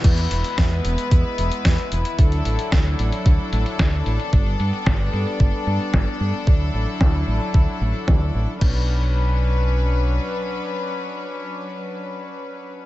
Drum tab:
CC |x---------------|----------------|----------------|----------------|
HH |xxxxx-xxx-xxxxxx|xxxxx-xxx-xxxxxx|xxxxx-xxx-xx-xxx|xxxx--x---xx--xx|
SD |----o-------o---|----o-------o---|----o-------o---|----o-------o---|
BD |o---o---o---o---|o---o---o---o---|o---o---o---o---|o---o---o---o---|

CC |x---------------|----------------|
HH |----------------|----------------|
SD |----------------|----------------|
BD |o---------------|----------------|